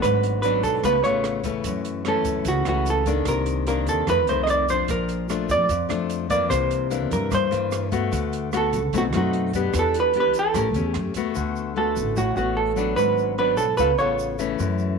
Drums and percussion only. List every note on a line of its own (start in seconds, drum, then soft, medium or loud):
0.03 kick medium
0.03 cross-stick medium
0.03 closed hi-hat medium
0.03 shaker medium
0.23 closed hi-hat soft
0.23 shaker soft
0.43 closed hi-hat soft
0.43 shaker medium
0.63 kick soft
0.63 closed hi-hat soft
0.63 shaker medium
0.84 kick medium
0.84 cross-stick medium
0.84 closed hi-hat soft
0.84 shaker medium
1.04 closed hi-hat soft
1.04 shaker soft
1.24 cross-stick medium
1.24 closed hi-hat soft
1.44 kick medium
1.44 closed hi-hat soft
1.44 shaker medium
1.64 kick medium
1.64 closed hi-hat medium
1.64 shaker medium
1.85 closed hi-hat soft
1.85 shaker soft
2.05 cross-stick medium
2.05 closed hi-hat soft
2.25 kick medium
2.25 closed hi-hat soft
2.25 shaker medium
2.45 kick soft
2.45 closed hi-hat medium
2.45 shaker medium
2.65 cross-stick medium
2.65 closed hi-hat soft
2.65 shaker soft
2.86 closed hi-hat soft
2.86 shaker soft
3.06 kick medium
3.06 closed hi-hat soft
3.06 shaker medium
3.25 kick medium
3.25 cross-stick medium
3.25 closed hi-hat medium
3.25 shaker medium
3.46 closed hi-hat soft
3.46 shaker soft
3.67 closed hi-hat soft
3.67 shaker medium
3.87 closed hi-hat soft
3.87 shaker medium
4.07 kick medium
4.07 cross-stick medium
4.07 closed hi-hat soft
4.07 shaker medium
4.27 closed hi-hat soft
4.27 shaker soft
4.47 cross-stick soft
4.47 closed hi-hat soft
4.47 shaker soft
4.69 closed hi-hat soft
4.69 shaker medium
4.88 kick medium
4.88 closed hi-hat medium
4.88 shaker medium
5.09 closed hi-hat soft
5.09 shaker soft
5.29 cross-stick soft
5.29 closed hi-hat soft
5.29 shaker medium
5.49 kick soft
5.49 closed hi-hat soft
5.49 shaker medium
5.69 kick medium
5.69 closed hi-hat soft
5.69 shaker medium
5.90 cross-stick medium
5.90 closed hi-hat soft
5.90 shaker soft
6.10 closed hi-hat soft
6.10 shaker medium
6.30 kick soft
6.30 closed hi-hat soft
6.30 shaker medium
6.50 kick medium
6.50 cross-stick medium
6.50 closed hi-hat medium
6.50 shaker medium
6.71 closed hi-hat soft
6.71 shaker soft
6.91 closed hi-hat soft
6.91 shaker soft
7.11 kick soft
7.11 closed hi-hat soft
7.11 shaker medium
7.31 kick medium
7.31 cross-stick soft
7.31 closed hi-hat medium
7.31 shaker medium
7.52 closed hi-hat soft
7.52 shaker soft
7.72 cross-stick medium
7.72 closed hi-hat soft
7.72 shaker medium
7.92 kick soft
7.92 closed hi-hat soft
7.92 shaker medium
8.13 kick medium
8.13 closed hi-hat medium
8.13 shaker medium
8.33 closed hi-hat soft
8.33 shaker soft
8.53 cross-stick medium
8.53 closed hi-hat soft
8.53 shaker medium
8.73 kick soft
8.73 closed hi-hat soft
8.73 shaker medium
8.93 kick soft
8.93 closed hi-hat soft
8.93 shaker medium
9.13 cross-stick medium
9.13 closed hi-hat soft
9.13 shaker soft
9.33 closed hi-hat soft
9.53 kick soft
9.53 closed hi-hat soft
9.53 shaker medium
9.74 kick medium
9.74 cross-stick medium
9.74 closed hi-hat medium
9.74 shaker medium
9.94 closed hi-hat soft
9.94 shaker soft
10.13 closed hi-hat soft
10.34 closed hi-hat soft
10.34 shaker medium
10.54 kick medium
10.54 cross-stick medium
10.54 closed hi-hat medium
10.54 shaker medium
10.74 closed hi-hat soft
10.74 shaker soft
10.94 cross-stick medium
10.94 closed hi-hat soft
11.14 closed hi-hat soft
11.14 shaker medium
11.35 shaker medium
11.56 shaker soft
11.96 shaker medium
12.17 shaker medium
12.37 shaker soft
12.77 shaker medium
12.98 shaker medium
13.18 shaker soft
13.57 shaker medium
13.78 shaker medium
13.98 shaker soft
14.19 shaker medium
14.39 shaker medium
14.59 shaker medium
14.79 shaker soft